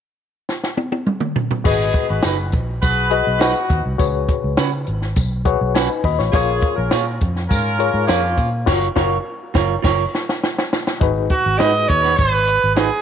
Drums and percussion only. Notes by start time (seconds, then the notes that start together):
0.49 snare
0.64 snare
0.77 high tom
0.92 high tom
1.07 mid tom
1.20 mid tom
1.36 floor tom
1.51 floor tom
1.65 kick, crash, tambourine
1.93 kick, closed hi-hat
2.23 snare, closed hi-hat, tambourine
2.52 kick, closed hi-hat
2.82 kick, closed hi-hat, tambourine
3.11 closed hi-hat
3.40 snare, closed hi-hat, tambourine
3.70 kick, closed hi-hat
3.99 kick, closed hi-hat, tambourine
4.28 kick, closed hi-hat
4.57 snare, closed hi-hat, tambourine
4.87 closed hi-hat
5.02 snare
5.16 kick, closed hi-hat, tambourine
5.45 kick, closed hi-hat
5.75 snare, closed hi-hat, tambourine
6.04 kick, open hi-hat
6.19 snare
6.33 kick, closed hi-hat, tambourine
6.61 kick, closed hi-hat
6.91 snare, closed hi-hat, tambourine
7.21 kick, closed hi-hat
7.36 snare
7.50 kick, closed hi-hat, tambourine
7.80 closed hi-hat
8.08 snare, closed hi-hat, tambourine
8.38 kick, closed hi-hat
8.67 kick, snare, crash
8.96 kick, snare
9.55 kick, snare
9.84 kick, snare, crash
10.15 snare
10.29 snare
10.43 snare
10.58 snare
10.73 snare
10.87 snare
11.01 kick, closed hi-hat
11.29 kick, closed hi-hat
11.60 snare, closed hi-hat
11.89 kick, closed hi-hat
12.04 snare, closed hi-hat
12.18 kick, closed hi-hat
12.47 closed hi-hat
12.76 snare, closed hi-hat